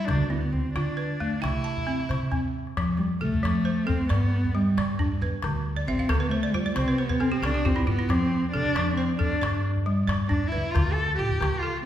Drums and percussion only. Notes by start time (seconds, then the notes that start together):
0.09 calabash thump, calabash click
0.20 calabash click
0.43 calabash click
0.76 calabash click
0.98 calabash click
1.21 calabash thump, calabash click
1.44 calabash click
1.77 calabash thump
2.00 calabash click
2.11 calabash click
2.22 calabash click
2.32 calabash thump, calabash click
2.67 calabash click
2.77 calabash thump, calabash click
3.34 calabash thump
3.45 calabash click
3.89 calabash thump
4.01 calabash click
4.10 calabash click
4.21 calabash click
4.45 calabash thump
4.78 calabash click
4.88 calabash click
4.99 calabash thump
5.43 calabash thump, calabash click
5.99 calabash thump
6.09 calabash click
6.54 calabash thump
6.66 calabash click
6.76 calabash click
6.88 calabash click
7.10 calabash thump
7.43 calabash click
7.54 calabash click
7.66 calabash thump
8.10 calabash thump, calabash click
8.65 calabash thump
8.76 calabash click
9.20 calabash thump
9.32 calabash click
9.43 calabash click
9.54 calabash click
9.76 calabash thump
10.09 calabash click
10.20 calabash click
10.31 calabash thump
10.76 calabash thump, calabash click
10.86 calabash click
11.31 calabash thump
11.42 calabash click
11.54 calabash click
11.77 calabash click